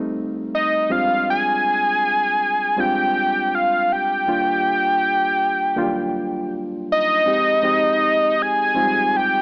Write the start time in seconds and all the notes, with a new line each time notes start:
Already playing: F2 G3 A3 C4 D#4
0.55 D#5
0.89 F2 G3 G#3 C4 D4 F4 F5
1.30 G#5
2.77 F2 G3 G#3 C4 D4 F4 G5
3.55 F5
3.92 G5
4.26 D#2 G3 A#3 D4 F4
5.75 D#2 F#3 A#3 D4 F4
5.83 G3
6.92 D#5
7.25 F2 G#3 C4 D#4 G4
7.62 F2 G#3 C4 D#4 G4
8.42 G#5
8.74 F2 G#3 C4 D#4 F4
8.83 G3
9.16 G5